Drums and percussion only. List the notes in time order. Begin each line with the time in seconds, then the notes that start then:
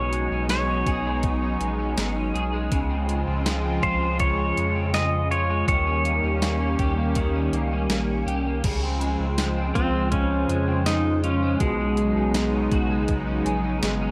0.13 closed hi-hat
0.49 snare, closed hi-hat, tambourine
0.87 kick, closed hi-hat
1.23 kick, closed hi-hat
1.61 closed hi-hat
1.98 snare, closed hi-hat, tambourine
2.36 closed hi-hat
2.72 kick, closed hi-hat
3.09 closed hi-hat
3.46 snare, closed hi-hat, tambourine
3.83 kick, closed hi-hat
4.20 kick, closed hi-hat
4.57 closed hi-hat
4.94 snare, closed hi-hat, tambourine
5.32 closed hi-hat
5.68 kick, closed hi-hat
6.05 closed hi-hat
6.42 snare, closed hi-hat, tambourine
6.79 kick, closed hi-hat
7.15 kick, closed hi-hat
7.53 closed hi-hat
7.90 snare, closed hi-hat, tambourine
8.28 closed hi-hat
8.64 kick, closed hi-hat, crash
9.01 closed hi-hat
9.38 snare, closed hi-hat, tambourine
9.75 kick, closed hi-hat
10.12 kick, closed hi-hat
10.49 closed hi-hat
10.86 snare, closed hi-hat, tambourine
11.24 closed hi-hat
11.60 kick, closed hi-hat
11.97 closed hi-hat
12.34 snare, closed hi-hat, tambourine
12.72 kick, closed hi-hat
13.08 kick, closed hi-hat
13.46 closed hi-hat
13.83 snare, closed hi-hat, tambourine